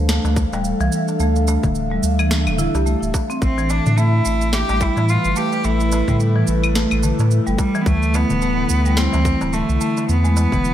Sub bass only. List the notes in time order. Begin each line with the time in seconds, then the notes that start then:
Already playing: D2
0.24 D2
0.52 D1
0.80 C2
1.20 D2
1.64 D1
2.03 D2
2.47 D1
2.74 C2
3.02 D1
3.42 A1
3.86 A2
4.26 A1
4.69 A1
4.97 A2
5.25 G1
5.65 A1
6.08 A2
6.48 A1
6.92 A1
7.19 A2
7.47 G1
7.86 D2
8.30 D1
8.70 D2
9.14 D2
9.42 D1
9.69 C2
10.09 E2
10.52 E1